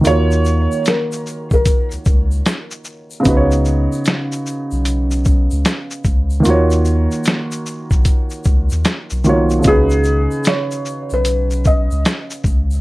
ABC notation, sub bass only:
X:1
M:4/4
L:1/16
Q:"Swing 16ths" 1/4=75
K:D#m
V:1 name="Sub bass" clef=bass
D,,3 z4 A,,, z C,, C,,2 z4 | C,,3 z4 B,,,4 C,, z2 C,,2 | D,,3 z4 A,,, z2 C,, D,, z B,,, B,,,2 | C,,3 z4 B,,,4 C,, z2 C,,2 |]